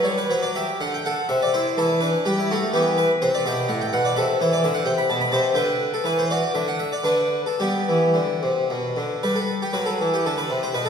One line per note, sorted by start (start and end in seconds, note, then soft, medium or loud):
0.03 0.28 G3 medium
0.03 0.17 C#5 medium
0.18 0.30 B4 medium
0.30 0.66 F#3 medium
0.30 0.43 C5 medium
0.42 0.55 D5 medium
0.55 0.79 G4 medium
0.55 0.81 E5 medium
0.80 1.16 D3 medium
0.80 0.93 F#5 medium
0.94 1.06 G5 medium
1.05 1.29 A4 medium
1.05 1.27 F#5 loud
1.29 1.65 C3 medium
1.29 1.42 E5 loud
1.42 1.55 D5 medium
1.54 1.77 E4 medium
1.54 1.75 C5 medium
1.77 2.13 E3 medium
1.77 2.01 E4 medium
1.77 2.03 A4 loud
2.01 2.25 D4 medium
2.01 2.26 B4 medium
2.25 2.61 G3 medium
2.25 2.39 G4 loud
2.38 2.51 E4 medium
2.51 2.74 A3 medium
2.51 2.71 F#4 medium
2.73 3.08 E3 medium
2.73 2.96 B3 medium
2.73 2.98 G4 medium
2.98 3.10 B4 loud
3.22 3.45 C3 medium
3.22 3.34 C5 loud
3.35 3.46 D5 medium
3.46 3.68 B2 medium
3.46 3.68 G4 medium
3.46 3.66 E5 loud
3.68 3.91 A2 medium
3.68 3.80 F#5 medium
3.81 3.92 G5 loud
3.93 4.15 B2 medium
3.93 4.04 F#5 loud
4.05 4.16 D5 medium
4.16 4.38 C3 medium
4.16 4.38 A4 medium
4.16 4.39 E5 loud
4.41 4.62 E3 medium
4.41 4.52 C5 medium
4.53 4.63 D5 medium
4.64 4.86 D3 medium
4.64 4.75 E5 loud
4.74 4.86 F#5 medium
4.85 5.08 C3 medium
4.85 4.98 G5 loud
4.98 5.10 B5 medium
5.10 5.32 B2 medium
5.10 5.22 A5 loud
5.21 5.33 B5 loud
5.32 5.56 C3 medium
5.32 5.56 C5 medium
5.32 5.57 A5 loud
5.54 5.90 D3 medium
5.54 5.90 B4 medium
5.54 5.92 G5 loud
5.94 6.06 A4 medium
6.04 6.40 E3 medium
6.04 6.18 B4 medium
6.19 6.30 C5 medium
6.30 6.54 F#4 medium
6.30 6.51 D5 medium
6.54 6.91 D3 medium
6.54 6.67 E5 medium
6.68 6.80 F#5 medium
6.79 6.92 E5 medium
6.92 7.05 D5 medium
7.04 7.43 D3 medium
7.04 7.43 D4 medium
7.04 7.39 B4 medium
7.46 7.60 A4 medium
7.60 7.86 G3 medium
7.60 8.67 B3 medium
7.60 8.53 G4 medium
7.88 8.14 E3 medium
8.14 8.41 D3 medium
8.43 8.69 C3 medium
8.70 8.96 B2 medium
8.97 9.22 D3 medium
9.23 9.60 G3 medium
9.23 9.36 B4 loud
9.36 9.61 A4 medium
9.62 9.75 G4 medium
9.73 9.98 F#3 medium
9.73 9.87 B4 loud
9.86 10.11 A4 medium
10.01 10.24 E3 medium
10.14 10.25 G4 medium
10.26 10.49 D3 medium
10.26 10.38 A4 medium
10.38 10.62 B4 loud
10.50 10.73 C3 medium
10.63 10.75 C5 medium
10.74 10.89 B2 medium
10.74 10.87 B4 loud
10.85 10.89 A4 medium